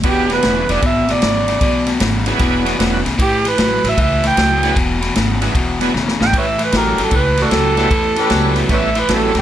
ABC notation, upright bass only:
X:1
M:4/4
L:1/8
Q:"Swing" 1/4=152
K:A
V:1 name="Upright bass" clef=bass
E,,,2 E,,, E,,, G,,,2 G,,,2 | B,,,2 G,,,2 E,,,2 E,,, B,,, | A,,,2 A,,, A,,, C,,2 C,,2 | E,,,2 G,,,2 E,,,2 E,,, G,,, |
A,,,2 A,,, A,,, C,,2 C,,2 | E,,2 C,,2 A,,,2 A,,, D,, |]